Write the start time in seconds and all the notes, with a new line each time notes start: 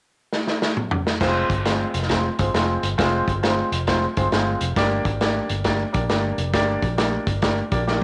0.33 snare
0.47 snare
0.62 snare
0.77 mid tom
0.91 floor tom
1.07 snare
1.21 F1 G#3 C4 F4 C5, kick, snare, crash
1.50 G1, kick, closed hi-hat
1.65 G#3 C4 F4 C5, snare, closed hi-hat
1.94 F1, closed hi-hat
2.02 snare
2.09 G#3 C4 F4 C5, kick, snare, closed hi-hat
2.39 G1 G#3 C4 F4 C5, kick, closed hi-hat
2.54 F1 G#3 C4 F4 C5, snare, closed hi-hat
2.83 G1, closed hi-hat
2.98 F1 G#3 C4 F4 C5, kick, snare, closed hi-hat
3.27 G1, kick, closed hi-hat
3.43 G#3 C4 F4 C5, snare, closed hi-hat
3.72 F1, closed hi-hat
3.87 G#3 C4 F4 C5, kick, snare, closed hi-hat
4.17 G1 G#3 C4 F4 C5 C6, kick, closed hi-hat
4.32 G1 G#3 C4 F4 C5 F5, snare, closed hi-hat
4.61 F1, closed hi-hat
4.76 G1 A#3 D4 G4 D5, kick, snare, closed hi-hat
5.05 G#1, kick, closed hi-hat
5.21 A#3 D4 G4 D5, snare, closed hi-hat
5.49 G1, closed hi-hat
5.64 A#3 D4 G4 D5, kick, snare, closed hi-hat
5.93 A#1 A#3 D4 G4 D5, kick, closed hi-hat
6.09 G1 A#3 D4 G4 D5, snare, closed hi-hat
6.38 F1, closed hi-hat
6.53 G1 A#3 D4 G4 D5, kick, snare, closed hi-hat
6.82 A#1, kick, closed hi-hat
6.97 A#3 D4 G4 D5, snare, closed hi-hat
7.27 G1, kick, closed hi-hat
7.42 A#3 D4 G4 D5, kick, snare, closed hi-hat
7.72 A#1 A#3 D4 G4 D5, kick, closed hi-hat
7.87 A#3 D4 G4 D5, snare